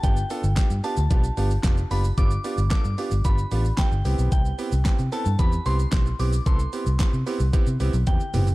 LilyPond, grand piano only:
\new Staff \with { instrumentName = "Grand piano" } { \time 4/4 \key c \major \tempo 4 = 112 <b d' f' g'>8 <b d' f' a'>8 <b d' f' g'>8 <b d' f' g'>8 <b d' f' g'>8 <b d' f' g'>8 <b d' f' g'>8 <b d' f' g'>8 | <b d' f' g'>8 <b d' f' g'>8 <b d' f' a'>8 <b d' f' g'>8 <b d' f' g'>8 <b d' f' g'>8 <b d' f' g'>8 <b c' e' g'>8~ | <b c' e' g'>8 <b c' e' g'>8 <b c' e' g'>8 <b c' e' a'>8 <b c' e' g'>8 <b c' e' g'>8 <b c' e' g'>8 <b c' e' g'>8 | <b c' e' a'>8 <b c' e' g'>8 <b c' e' g'>8 <b c' e' g'>8 <b c' e' g'>8 <b c' e' g'>8 <b c' e' g'>8 <b c' e' g'>8 | }